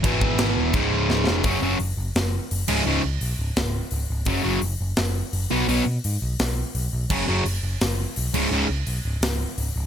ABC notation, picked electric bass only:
X:1
M:4/4
L:1/8
Q:1/4=170
K:Gb
V:1 name="Picked electric bass" clef=bass
^G,,, G,,, G,,, E,,, D,,, D,,, D,,, F,,, | G,,, G,,, G,,, G,,, G,,,2 G,,, D,,, | D,,, D,, C,, D,,, D,,,2 D,,, D,,, | G,,, G,,, G,,, G,,, G,,,2 G,,, C,, |
C,, C, A,, C,, C,,2 C,, C,, | G,,, G,,, G,,, G,,, G,,,2 C,, D,,, | D,,, D,, C,, D,,, D,,,2 D,,, D,,, |]